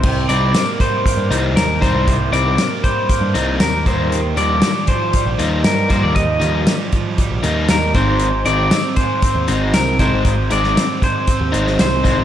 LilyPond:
<<
  \new Staff \with { instrumentName = "Clean electric guitar" } { \time 4/4 \key c \minor \tempo 4 = 117 c''8 d''4 c''4. bes'8 c''8~ | c''8 d''4 c''4. bes'8 c''8~ | c''8 d''4 c''4. bes'8 c''16 d''16 | ees''2. bes'8 c''8~ |
c''8 d''4 c''4. bes'8 c''8~ | c''8 d''4 c''4. c''4 | }
  \new Staff \with { instrumentName = "Overdriven electric guitar" } { \time 4/4 \key c \minor r8 <c g c' ees'>8 r4. <c g c' ees'>8 r8 <c g c' ees'>8 | r8 <c g c' ees'>8 r4. <c g c' ees'>8 r8 <ees g bes ees'>8 | r8 <ees g bes ees'>8 r4. <ees g bes ees'>8 r8 <ees g bes ees'>8 | r8 <ees g bes ees'>8 r4. <ees g bes ees'>8 r8 <ees aes c' ees'>8 |
r8 <ees aes c' ees'>8 r4. <ees aes c' ees'>8 r8 <ees aes c' ees'>8 | r8 <ees aes c' ees'>8 r4. <ees aes c' ees'>8 r8 <ees aes c' ees'>8 | }
  \new Staff \with { instrumentName = "Overdriven electric guitar" } { \clef bass \time 4/4 \key c \minor c8 g8 bes8 g8 bes8 ees'8 bes8 g8 | c8 g8 bes8 g8 bes8 ees'8 bes8 ees8 | ees8 f8 g8 f8 g8 ees'8 g8 f8 | ees8 f8 g8 f8 g8 ees'8 g8 aes,8 |
aes,8 ees8 c'8 aes8 c'8 ees'8 c'8 aes8 | aes,8 ees8 c'8 aes8 c'8 ees'8 c'8 aes8 | }
  \new Staff \with { instrumentName = "Picked electric bass" } { \clef bass \time 4/4 \key c \minor c,8 c,8 r4 r16 g,16 c,8 ees,8. c,16~ | c,8 c,8 r4 r16 g,16 c,8 ees,8 ees,8~ | ees,8 ees,8 r4 r16 bes,,16 ees,8 g,8. ees,16~ | ees,8 ees,8 r4 r16 bes,,16 ees,8 ees,8 aes,,8~ |
aes,,8 aes,,8 r4 r16 ees,16 aes,,8 c,8. aes,,16~ | aes,,8 aes,,8 r4 r16 ees,16 aes,,8 c,8. bes,,16 | }
  \new DrumStaff \with { instrumentName = "Drums" } \drummode { \time 4/4 <cymc bd>8 hh8 <hh sn tamb>8 <hh bd>8 <hh bd>8 hh8 <hh sn tamb>8 <hh bd>8 | <hh bd>8 hh8 <hh sn tamb>8 <hh bd>8 <hh bd>8 hh8 <hh sn tamb>8 <hh bd>8 | hh8 hh8 <hh sn tamb>8 <hh bd>8 <hh bd>8 hh8 <hh sn tamb>8 <hh bd>8 | <hh bd>8 hh8 <hh sn tamb>8 <hh bd>8 <hh bd>8 hh8 <hh sn tamb>8 <hh bd>8 |
hh8 hh8 <hh sn tamb>8 <hh bd>8 <hh bd>8 hh8 <hh sn tamb>8 <hh bd>8 | <hh bd>8 hh16 sn16 <hh sn tamb>8 <hh bd>8 <hh bd>8 hh16 sn16 <hh sn tamb>8 <hh bd>8 | }
>>